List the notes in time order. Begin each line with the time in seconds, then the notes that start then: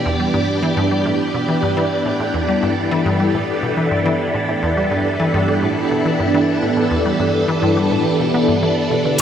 Already playing: E3 B3 D4 G4 D5
0.06 E2 B5
0.20 G3
0.34 G2
0.63 E3
0.77 G2
0.91 G3
1.06 A2
1.34 B2
1.48 E3
1.63 G2
1.77 E3
2.06 A2
2.20 A2
2.34 E2
2.44 A4
2.48 G3
2.63 G2
2.91 E3
3.06 G2
3.20 G3
3.34 A2
3.63 B2
3.77 E3
3.91 G2
4.06 E3
4.34 A2
4.49 A2
4.63 E2
4.77 G3
4.91 G2
5.20 E3
5.34 G2
5.48 G3
5.63 A2
5.91 B2
6.06 E3
6.20 G2
6.34 E3
6.63 A2
6.77 A2
6.91 E2
7.05 G3
7.20 G2
7.48 E3
7.62 G2
7.77 G3
7.91 A2
8.20 B2
8.34 B3
8.48 G2
8.63 E3
8.78 F#5
8.91 B2
9.05 D3